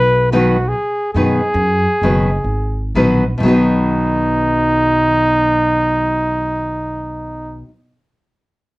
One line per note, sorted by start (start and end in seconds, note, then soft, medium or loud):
0.00 0.71 B1 loud
0.00 0.32 B4 loud
0.32 0.55 B2 medium
0.32 0.55 D#3 medium
0.32 0.55 F#3 medium
0.32 0.56 B3 medium
0.32 0.55 D#4 medium
0.32 0.70 F#4 medium
0.32 0.56 B4 medium
0.68 1.13 G#4 medium
1.14 1.40 F#2 medium
1.14 1.39 B2 medium
1.14 1.39 D#3 medium
1.14 1.39 F#3 medium
1.14 1.39 B3 medium
1.14 1.39 D#4 medium
1.14 2.91 G#4 medium
1.14 1.40 B4 medium
1.54 1.85 F#2 loud
2.01 2.40 F#1 medium
2.01 2.28 B2 medium
2.01 2.28 D#3 medium
2.01 2.28 F#3 medium
2.01 2.28 B3 medium
2.01 2.28 D#4 medium
2.01 2.28 B4 medium
2.44 2.91 G#1 medium
2.95 3.37 A#1 medium
2.95 3.23 B2 medium
2.95 3.23 D#3 medium
2.95 3.23 F#3 medium
2.95 3.23 B3 medium
2.95 3.23 D#4 medium
2.95 3.23 B4 medium
3.38 7.61 B1 loud
3.38 7.62 B2 medium
3.38 7.65 D#3 medium
3.38 7.61 D#4 medium
3.43 7.68 F#3 medium
3.43 7.69 B3 medium
3.43 7.71 D#4 medium
3.48 7.73 B4 medium